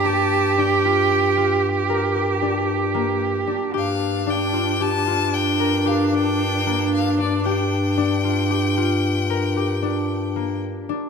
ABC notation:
X:1
M:7/4
L:1/8
Q:1/4=114
K:Gm
V:1 name="Violin"
a2 g4 z8 | f2 g2 a2 g2 f g3 f d | g12 z2 |]
V:2 name="Harp"
G2 D F G F2 B G D2 B,2 D | G2 D F G F2 B G D2 B,2 D | G2 D F G F2 B G D2 B,2 D |]
V:3 name="Cello"
G12- G2 | D12- D2- | D12- D z |]
V:4 name="Bass clarinet" clef=bass
G,,12- G,,2 | G,,12- G,,2- | G,,12- G,,2 |]